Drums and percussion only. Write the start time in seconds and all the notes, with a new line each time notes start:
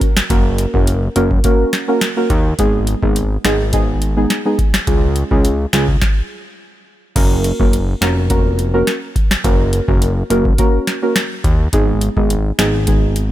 0.01 kick, closed hi-hat
0.17 snare
0.30 kick, closed hi-hat
0.58 closed hi-hat
0.74 kick
0.87 closed hi-hat
1.16 closed hi-hat
1.31 kick
1.44 kick, closed hi-hat
1.73 snare, closed hi-hat
2.01 snare, closed hi-hat
2.30 kick, closed hi-hat
2.59 kick, closed hi-hat
2.87 closed hi-hat
3.03 kick
3.16 closed hi-hat
3.45 snare, closed hi-hat
3.73 kick, closed hi-hat
4.02 closed hi-hat
4.30 snare, closed hi-hat
4.59 kick, closed hi-hat
4.74 snare
4.87 kick, closed hi-hat
5.16 closed hi-hat
5.31 kick
5.45 closed hi-hat
5.73 snare, closed hi-hat
5.88 kick
6.02 kick, snare
7.16 kick, closed hi-hat, crash
7.44 closed hi-hat
7.60 kick
7.73 closed hi-hat
8.02 snare, closed hi-hat
8.30 kick, closed hi-hat
8.59 closed hi-hat
8.87 snare, closed hi-hat
9.16 kick, closed hi-hat
9.31 snare
9.44 kick, closed hi-hat
9.73 closed hi-hat
9.88 kick
10.02 closed hi-hat
10.30 closed hi-hat
10.45 kick
10.58 kick, closed hi-hat
10.87 snare, closed hi-hat
11.16 snare, closed hi-hat
11.44 kick, closed hi-hat
11.73 kick, closed hi-hat
12.01 closed hi-hat
12.17 kick
12.30 closed hi-hat
12.59 snare, closed hi-hat
12.87 kick, closed hi-hat
13.16 closed hi-hat